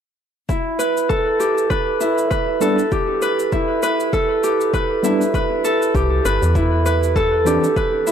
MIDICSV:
0, 0, Header, 1, 5, 480
1, 0, Start_track
1, 0, Key_signature, 1, "minor"
1, 0, Tempo, 606061
1, 391, Time_signature, 4, 2, 24, 8
1, 6429, End_track
2, 0, Start_track
2, 0, Title_t, "Harp"
2, 0, Program_c, 0, 46
2, 386, Note_on_c, 0, 64, 67
2, 624, Note_on_c, 0, 71, 83
2, 865, Note_on_c, 0, 69, 84
2, 1105, Note_on_c, 0, 67, 62
2, 1342, Note_off_c, 0, 71, 0
2, 1346, Note_on_c, 0, 71, 91
2, 1584, Note_off_c, 0, 64, 0
2, 1587, Note_on_c, 0, 64, 66
2, 1822, Note_off_c, 0, 71, 0
2, 1825, Note_on_c, 0, 71, 90
2, 2066, Note_off_c, 0, 69, 0
2, 2069, Note_on_c, 0, 69, 84
2, 2306, Note_off_c, 0, 67, 0
2, 2309, Note_on_c, 0, 67, 70
2, 2547, Note_off_c, 0, 71, 0
2, 2550, Note_on_c, 0, 71, 88
2, 2788, Note_off_c, 0, 64, 0
2, 2791, Note_on_c, 0, 64, 76
2, 3028, Note_off_c, 0, 71, 0
2, 3031, Note_on_c, 0, 71, 90
2, 3268, Note_off_c, 0, 69, 0
2, 3271, Note_on_c, 0, 69, 90
2, 3508, Note_off_c, 0, 67, 0
2, 3511, Note_on_c, 0, 67, 64
2, 3748, Note_off_c, 0, 71, 0
2, 3751, Note_on_c, 0, 71, 96
2, 3991, Note_off_c, 0, 64, 0
2, 3994, Note_on_c, 0, 64, 69
2, 4230, Note_off_c, 0, 71, 0
2, 4233, Note_on_c, 0, 71, 90
2, 4467, Note_off_c, 0, 69, 0
2, 4470, Note_on_c, 0, 69, 85
2, 4710, Note_off_c, 0, 67, 0
2, 4713, Note_on_c, 0, 67, 70
2, 4948, Note_off_c, 0, 71, 0
2, 4951, Note_on_c, 0, 71, 94
2, 5186, Note_off_c, 0, 64, 0
2, 5189, Note_on_c, 0, 64, 74
2, 5427, Note_off_c, 0, 71, 0
2, 5430, Note_on_c, 0, 71, 90
2, 5666, Note_off_c, 0, 69, 0
2, 5669, Note_on_c, 0, 69, 99
2, 5906, Note_off_c, 0, 67, 0
2, 5909, Note_on_c, 0, 67, 69
2, 6145, Note_off_c, 0, 71, 0
2, 6148, Note_on_c, 0, 71, 92
2, 6386, Note_off_c, 0, 64, 0
2, 6389, Note_on_c, 0, 64, 68
2, 6429, Note_off_c, 0, 64, 0
2, 6429, Note_off_c, 0, 67, 0
2, 6429, Note_off_c, 0, 69, 0
2, 6429, Note_off_c, 0, 71, 0
2, 6429, End_track
3, 0, Start_track
3, 0, Title_t, "Tine electric piano"
3, 0, Program_c, 1, 4
3, 2063, Note_on_c, 1, 55, 64
3, 2070, Note_on_c, 1, 59, 64
3, 2078, Note_on_c, 1, 62, 73
3, 2219, Note_off_c, 1, 55, 0
3, 2223, Note_off_c, 1, 59, 0
3, 2227, Note_off_c, 1, 62, 0
3, 3982, Note_on_c, 1, 55, 68
3, 3989, Note_on_c, 1, 59, 61
3, 3997, Note_on_c, 1, 62, 74
3, 4138, Note_off_c, 1, 55, 0
3, 4142, Note_off_c, 1, 59, 0
3, 4146, Note_off_c, 1, 62, 0
3, 5900, Note_on_c, 1, 52, 70
3, 5909, Note_on_c, 1, 60, 64
3, 5917, Note_on_c, 1, 62, 74
3, 6058, Note_off_c, 1, 52, 0
3, 6062, Note_off_c, 1, 60, 0
3, 6066, Note_off_c, 1, 62, 0
3, 6429, End_track
4, 0, Start_track
4, 0, Title_t, "FM bass"
4, 0, Program_c, 2, 39
4, 4710, Note_on_c, 2, 36, 95
4, 4912, Note_off_c, 2, 36, 0
4, 4951, Note_on_c, 2, 31, 84
4, 5063, Note_off_c, 2, 31, 0
4, 5087, Note_on_c, 2, 40, 82
4, 6007, Note_off_c, 2, 40, 0
4, 6429, End_track
5, 0, Start_track
5, 0, Title_t, "Drums"
5, 389, Note_on_c, 9, 36, 91
5, 392, Note_on_c, 9, 69, 28
5, 468, Note_off_c, 9, 36, 0
5, 471, Note_off_c, 9, 69, 0
5, 631, Note_on_c, 9, 69, 68
5, 710, Note_off_c, 9, 69, 0
5, 770, Note_on_c, 9, 69, 36
5, 849, Note_off_c, 9, 69, 0
5, 870, Note_on_c, 9, 36, 96
5, 872, Note_on_c, 9, 69, 28
5, 949, Note_off_c, 9, 36, 0
5, 951, Note_off_c, 9, 69, 0
5, 1113, Note_on_c, 9, 69, 65
5, 1192, Note_off_c, 9, 69, 0
5, 1251, Note_on_c, 9, 69, 36
5, 1330, Note_off_c, 9, 69, 0
5, 1350, Note_on_c, 9, 36, 97
5, 1352, Note_on_c, 9, 69, 28
5, 1429, Note_off_c, 9, 36, 0
5, 1431, Note_off_c, 9, 69, 0
5, 1592, Note_on_c, 9, 69, 68
5, 1671, Note_off_c, 9, 69, 0
5, 1728, Note_on_c, 9, 69, 38
5, 1807, Note_off_c, 9, 69, 0
5, 1831, Note_on_c, 9, 36, 94
5, 1831, Note_on_c, 9, 69, 30
5, 1910, Note_off_c, 9, 36, 0
5, 1911, Note_off_c, 9, 69, 0
5, 2070, Note_on_c, 9, 69, 65
5, 2150, Note_off_c, 9, 69, 0
5, 2208, Note_on_c, 9, 69, 39
5, 2287, Note_off_c, 9, 69, 0
5, 2311, Note_on_c, 9, 36, 96
5, 2311, Note_on_c, 9, 69, 29
5, 2390, Note_off_c, 9, 36, 0
5, 2390, Note_off_c, 9, 69, 0
5, 2551, Note_on_c, 9, 69, 71
5, 2630, Note_off_c, 9, 69, 0
5, 2688, Note_on_c, 9, 69, 38
5, 2767, Note_off_c, 9, 69, 0
5, 2792, Note_on_c, 9, 36, 99
5, 2792, Note_on_c, 9, 69, 30
5, 2871, Note_off_c, 9, 36, 0
5, 2871, Note_off_c, 9, 69, 0
5, 3033, Note_on_c, 9, 69, 69
5, 3112, Note_off_c, 9, 69, 0
5, 3170, Note_on_c, 9, 69, 39
5, 3249, Note_off_c, 9, 69, 0
5, 3272, Note_on_c, 9, 36, 100
5, 3273, Note_on_c, 9, 69, 30
5, 3351, Note_off_c, 9, 36, 0
5, 3352, Note_off_c, 9, 69, 0
5, 3514, Note_on_c, 9, 69, 70
5, 3594, Note_off_c, 9, 69, 0
5, 3651, Note_on_c, 9, 69, 40
5, 3730, Note_off_c, 9, 69, 0
5, 3751, Note_on_c, 9, 36, 92
5, 3754, Note_on_c, 9, 69, 33
5, 3830, Note_off_c, 9, 36, 0
5, 3833, Note_off_c, 9, 69, 0
5, 3994, Note_on_c, 9, 69, 65
5, 4073, Note_off_c, 9, 69, 0
5, 4130, Note_on_c, 9, 69, 42
5, 4209, Note_off_c, 9, 69, 0
5, 4231, Note_on_c, 9, 36, 98
5, 4234, Note_on_c, 9, 69, 31
5, 4310, Note_off_c, 9, 36, 0
5, 4313, Note_off_c, 9, 69, 0
5, 4474, Note_on_c, 9, 69, 71
5, 4553, Note_off_c, 9, 69, 0
5, 4612, Note_on_c, 9, 69, 41
5, 4691, Note_off_c, 9, 69, 0
5, 4710, Note_on_c, 9, 36, 102
5, 4715, Note_on_c, 9, 69, 31
5, 4789, Note_off_c, 9, 36, 0
5, 4794, Note_off_c, 9, 69, 0
5, 4955, Note_on_c, 9, 69, 76
5, 5034, Note_off_c, 9, 69, 0
5, 5090, Note_on_c, 9, 69, 43
5, 5170, Note_off_c, 9, 69, 0
5, 5190, Note_on_c, 9, 36, 107
5, 5193, Note_on_c, 9, 69, 31
5, 5269, Note_off_c, 9, 36, 0
5, 5272, Note_off_c, 9, 69, 0
5, 5434, Note_on_c, 9, 69, 75
5, 5514, Note_off_c, 9, 69, 0
5, 5571, Note_on_c, 9, 69, 43
5, 5650, Note_off_c, 9, 69, 0
5, 5669, Note_on_c, 9, 36, 99
5, 5675, Note_on_c, 9, 69, 33
5, 5748, Note_off_c, 9, 36, 0
5, 5754, Note_off_c, 9, 69, 0
5, 5914, Note_on_c, 9, 69, 71
5, 5993, Note_off_c, 9, 69, 0
5, 6050, Note_on_c, 9, 69, 41
5, 6130, Note_off_c, 9, 69, 0
5, 6150, Note_on_c, 9, 36, 102
5, 6152, Note_on_c, 9, 69, 32
5, 6229, Note_off_c, 9, 36, 0
5, 6232, Note_off_c, 9, 69, 0
5, 6394, Note_on_c, 9, 69, 78
5, 6429, Note_off_c, 9, 69, 0
5, 6429, End_track
0, 0, End_of_file